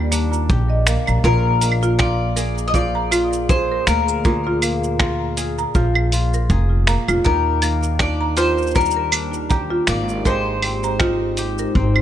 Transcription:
Already playing: upright bass D#2, kora D#3 G3 A#3 D4 G4, ambient pad D#3 A#3 G4 D5
0.12 marimba A#3, kora D4, open hi-hat, cabasa
0.32 marimba A#5, cabasa
0.49 upright bass A#1, kora G4, kick, cabasa
0.70 marimba D#5
0.87 kora A#3, finger snap, open hi-hat, cabasa
1.07 upright bass A#1, marimba A#5, cabasa, claves
1.24 upright bass A#1, kora A#2 G#4, ambient pad A#2, mandolin A#4, kick, cabasa
1.61 kora A#3, marimba A#5, open hi-hat, cabasa
1.72 claves
1.83 marimba F4, cabasa
1.99 kora F4, mandolin D5, finger snap, kick, cabasa
2.26 ambient pad G#4
2.36 kora G#4, marimba A#4, open hi-hat, cabasa
2.58 cabasa
2.68 mandolin D#5
2.74 kora F3, mandolin D5, kick, cabasa
2.95 marimba A#5
3.11 marimba F4, kora F4, open hi-hat, cabasa, claves
3.33 cabasa
3.49 kora G#4, mandolin C5, kick, cabasa
3.72 marimba A#4
3.87 upright bass D2, kora A#3, mandolin A#4, finger snap, open hi-hat, cabasa
4.08 cabasa
4.24 kora A#2 G#4, marimba A#5, kick, cabasa
4.47 marimba F4
4.62 kora A#3, open hi-hat, cabasa, claves
4.84 cabasa
5.00 kora F4, marimba A#4, finger snap, kick, cabasa
5.37 kora G#4, open hi-hat, cabasa
5.58 marimba A#5, cabasa
5.75 upright bass A#1, kora F3, marimba F4, kick, cabasa
5.95 claves
6.12 kora F4, open hi-hat, cabasa
6.34 marimba A#4, cabasa
6.50 upright bass F1, kora G#4, kick, cabasa
6.87 kora A#3, marimba A#5, finger snap, open hi-hat, cabasa
7.08 upright bass F1, marimba F4, cabasa, claves
7.24 upright bass D#2, kora D#3 G4, ambient pad D#3, mandolin A#4, kick, cabasa
7.62 kora A#3, marimba A#4, open hi-hat, cabasa, claves
7.83 cabasa
7.99 kora D4, mandolin D5, finger snap, kick, cabasa
8.21 marimba A#5
8.37 marimba F4, kora G4, mandolin C5, open hi-hat, cabasa
8.43 ambient pad G4
8.58 cabasa
8.62 cabasa
8.67 cabasa
8.71 kora G3, cabasa
8.75 mandolin A#4, kick, cabasa
8.80 cabasa
8.85 cabasa
8.91 cabasa
8.96 marimba A#4
9.12 kora D4, open hi-hat, cabasa, claves
9.33 cabasa
9.50 kora G4, marimba A#5, kick, cabasa
9.70 marimba F4
9.87 upright bass G#1, kora A#3, mandolin D5, finger snap, open hi-hat, cabasa
10.09 cabasa
10.25 kora G#3 G4, ambient pad G#3, marimba A#4, mandolin C5, kick, cabasa
10.44 ambient pad D#4
10.62 kora C4, open hi-hat, claves
10.83 marimba A#5, cabasa
11.00 kora D#4, marimba F4, finger snap, kick, cabasa
11.24 ambient pad C5
11.37 kora G4, open hi-hat, cabasa
11.58 marimba A#4, cabasa
11.75 upright bass G#1, kora C4, kick
11.96 claves

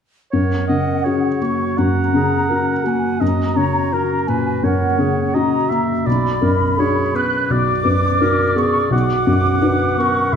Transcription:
0.31 felt piano F#2, clarinet A#4, oboe C#5, flute section F#5
0.68 felt piano C#3, oboe D#5
1.04 felt piano C#4 F#4, clarinet G#4, oboe C#5
1.42 felt piano A#3, clarinet F#4, flute section C#6
1.78 felt piano F#2, clarinet F#4, oboe F#5, flute section A#5
2.14 felt piano C#3, clarinet G#4
2.49 felt piano C#4 F#4, clarinet A#4
2.84 felt piano A#3, clarinet F#4, flute section G#5
3.20 felt piano F#2, clarinet F#4, oboe D#5, flute section A#5
3.56 felt piano C#3, oboe C#5
3.92 felt piano C#4 F#4, oboe A#4
4.27 felt piano A#2, oboe B4, flute section G#5
4.63 felt piano F#2, clarinet A#4, oboe C#5, flute section F#5
4.99 felt piano C#3, clarinet G#4
5.34 felt piano C#4 F#4, clarinet F#4, oboe D#5, flute section A#5
5.69 felt piano A#3, oboe E5
6.06 felt piano B1, clarinet F#4, oboe D5, flute section B5
6.42 felt piano F#2, clarinet A#4
6.77 felt piano D4 F#4, clarinet G#4, oboe C#5
7.14 felt piano B3, oboe B4, flute section F#6
7.50 felt piano B1, clarinet F#4, oboe D5, flute section D6
7.84 felt piano F#2, clarinet B4
8.21 felt piano D4 F#4, clarinet A#4
8.56 felt piano B3, clarinet G#4, flute section C#6
8.90 felt piano B1, clarinet F#4, oboe F#5, flute section D6
9.27 felt piano F#2, clarinet F#4
9.62 felt piano D4 F#4, clarinet B4
9.98 felt piano B3, clarinet A#4, flute section C#6
10.33 felt piano B1

